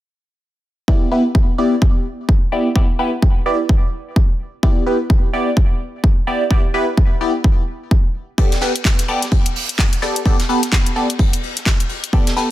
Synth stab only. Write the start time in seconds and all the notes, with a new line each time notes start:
0.88 B3 E4 G4 D5
1.11 B3 E4 G4 B4
1.58 B3 E4 G4 D5
2.52 B3 E4 G4 D5
2.76 B3 E4 G4 D5
2.99 B3 E4 G4 B4
3.46 B3 E4 G4 D5
4.63 B3 E4 G4 D5
4.87 B3 E4 G4 B4
5.33 B3 E4 G4 D5
6.27 B3 E4 G4 D5
6.51 B3 E4 G4 D5
6.74 B3 E4 G4 B4
7.21 B3 E4 G4 D5
8.38 B3 G4 A4 D5
8.62 B3 G4 A4 B4
9.08 B3 G4 A4 D5
10.02 B3 G4 A4 D5
10.26 B3 G4 A4 D5
10.49 B3 G4 A4 B4
10.96 B3 G4 A4 D5
12.13 B3 G4 A4 D5
12.37 B3 G4 A4 B4